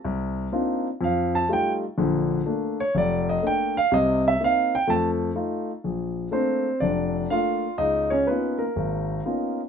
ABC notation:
X:1
M:4/4
L:1/8
Q:"Swing" 1/4=124
K:Bb
V:1 name="Grand piano"
z4 f a g z | z3 _d =d e g f | e =e f g a z3 | z2 [Cc]2 [Dd]2 [Ff]2 |
[Ee] [_D_d] _c [B,B]4 z |]
V:2 name="Grand piano"
C,,2 [B,CDEF] z F,,2 [G,A,EF] z | [B,,,D,]2 [A,B,D] z F,,,2 [A,B,D] z | [C,,C,]2 [B,CE] z [F,,A,]2 [A,EF] z | B,,,2 [A,B,D] z F,,,2 [A,B,D] z |
_D,,2 [B,_C_DEF] z _A,,,2 [B,CDEF] z |]